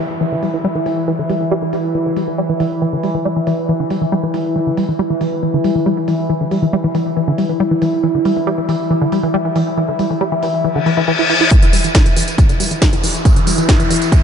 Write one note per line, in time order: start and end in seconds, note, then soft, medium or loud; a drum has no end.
0.00 11.50 E3 medium
0.00 11.50 E4 medium
0.00 downlifter medium
0.21 0.25 E3 medium
0.32 0.36 D3 medium
0.43 0.49 G3 medium
0.43 open hi-hat loud
0.54 0.58 E3 medium
0.64 0.67 G3 loud
0.75 0.79 E3 medium
0.86 0.92 E3 medium
0.86 open hi-hat loud
1.08 1.12 E3 medium
1.19 1.23 D3 medium
1.30 1.36 G3 medium
1.30 open hi-hat loud
1.41 1.45 E3 medium
1.51 1.54 G3 loud
1.62 1.66 E3 medium
1.73 1.79 E3 medium
1.73 open hi-hat loud
1.95 1.99 E3 medium
2.06 2.10 D3 medium
2.17 2.23 G3 medium
2.17 open hi-hat loud
2.28 2.32 E3 medium
2.38 2.41 G3 loud
2.49 2.53 E3 medium
2.60 2.66 E3 medium
2.60 open hi-hat loud
2.82 2.86 E3 medium
2.93 2.97 D3 medium
3.03 3.10 G3 medium
3.03 open hi-hat loud
3.15 3.19 E3 medium
3.25 3.28 G3 loud
3.36 3.40 E3 medium
3.47 3.53 E3 medium
3.47 open hi-hat loud
3.69 3.73 E3 medium
3.80 3.84 D3 medium
3.90 3.97 G3 medium
3.90 open hi-hat loud
4.02 4.06 E3 medium
4.12 4.15 G3 loud
4.23 4.27 E3 medium
4.34 4.40 E3 medium
4.34 open hi-hat loud
4.56 4.60 E3 medium
4.67 4.71 D3 medium
4.77 4.84 G3 medium
4.77 open hi-hat loud
4.89 4.93 E3 medium
4.99 5.02 G3 loud
5.10 5.13 E3 medium
5.21 5.27 E3 medium
5.21 open hi-hat loud
5.43 5.47 E3 medium
5.54 5.58 D3 medium
5.64 5.71 G3 medium
5.64 open hi-hat loud
5.75 5.80 E3 medium
5.86 5.89 G3 loud
5.97 6.00 E3 medium
6.08 6.14 E3 medium
6.08 open hi-hat loud
6.30 6.34 E3 medium
6.41 6.45 D3 medium
6.51 6.58 G3 medium
6.51 open hi-hat medium
6.62 6.66 E3 medium
6.73 6.76 G3 loud
6.84 6.87 E3 medium
6.95 7.01 E3 medium
6.95 open hi-hat medium
7.17 7.21 E3 medium
7.28 7.32 D3 medium
7.38 7.45 G3 medium
7.38 open hi-hat loud
7.49 7.53 E3 medium
7.60 7.63 G3 loud
7.71 7.74 E3 medium
7.82 7.88 E3 medium
7.82 open hi-hat loud
8.04 8.08 E3 medium
8.15 8.19 D3 medium
8.25 8.32 G3 medium
8.25 open hi-hat medium
8.36 8.40 E3 medium
8.47 8.50 G3 loud
8.58 8.60 E3 medium
8.69 8.75 E3 medium
8.69 open hi-hat medium
8.90 8.95 E3 medium
9.02 9.06 D3 medium
9.12 9.19 G3 medium
9.12 open hi-hat loud
9.23 9.27 E3 medium
9.34 9.36 G3 loud
9.45 9.47 E3 medium
9.56 9.62 E3 medium
9.56 open hi-hat loud
9.78 9.82 E3 medium
9.89 9.93 D3 medium
9.99 10.06 G3 medium
9.99 open hi-hat loud
10.10 10.14 E3 medium
10.21 10.23 G3 loud
10.32 10.34 E3 medium
10.43 10.49 E3 medium
10.43 open hi-hat medium
10.64 10.69 E3 medium
10.64 reverse cymbal medium
10.75 10.80 D3 medium
10.86 10.90 E3 loud
10.86 open hi-hat loud
10.97 11.01 E3 loud
11.08 11.12 E3 loud
11.19 11.21 E4 medium
11.30 11.34 E4 medium
11.30 open hi-hat loud
11.41 11.43 E4 loud
11.51 11.56 E3 medium
11.51 14.23 E3 medium
11.51 14.23 E4 medium
11.51 kick loud
11.51 closed hi-hat medium
11.51 tambourine soft
11.51 riser medium
11.62 11.66 D3 medium
11.62 closed hi-hat medium
11.62 tambourine soft
11.73 11.79 G3 medium
11.73 open hi-hat loud
11.73 tambourine medium
11.84 11.88 E3 medium
11.84 closed hi-hat medium
11.84 tambourine soft
11.95 11.97 G3 loud
11.95 kick loud
11.95 snare loud
11.95 closed hi-hat medium
11.95 tambourine soft
12.06 12.08 E3 medium
12.06 closed hi-hat medium
12.06 tambourine soft
12.17 12.23 E3 medium
12.17 open hi-hat loud
12.17 tambourine medium
12.22 closed hi-hat medium
12.28 closed hi-hat medium
12.28 tambourine soft
12.38 12.43 E3 medium
12.38 kick loud
12.38 closed hi-hat medium
12.38 tambourine soft
12.49 12.53 D3 medium
12.49 closed hi-hat medium
12.49 tambourine soft
12.60 12.66 G3 medium
12.60 open hi-hat loud
12.60 tambourine medium
12.71 12.75 E3 medium
12.71 closed hi-hat medium
12.71 tambourine soft
12.82 12.84 G3 loud
12.82 kick loud
12.82 snare loud
12.82 closed hi-hat medium
12.82 tambourine soft
12.93 12.95 E3 medium
12.93 closed hi-hat medium
12.93 tambourine soft
13.04 13.10 E3 medium
13.04 open hi-hat loud
13.04 tambourine medium
13.15 closed hi-hat medium
13.15 tambourine soft
13.25 13.29 E3 medium
13.25 kick loud
13.25 closed hi-hat medium
13.25 tambourine soft
13.36 13.40 D3 medium
13.36 closed hi-hat medium
13.36 tambourine soft
13.47 13.53 G3 medium
13.47 open hi-hat loud
13.47 tambourine medium
13.58 13.62 E3 medium
13.58 closed hi-hat medium
13.58 tambourine soft
13.69 13.71 G3 loud
13.69 kick loud
13.69 snare loud
13.69 closed hi-hat medium
13.69 tambourine soft
13.80 13.82 E3 medium
13.80 closed hi-hat medium
13.80 tambourine soft
13.90 13.97 E3 medium
13.90 open hi-hat loud
13.90 tambourine medium
13.96 closed hi-hat medium
14.02 closed hi-hat medium
14.02 tambourine soft
14.12 14.16 E3 medium
14.12 kick loud
14.12 closed hi-hat medium
14.12 tambourine soft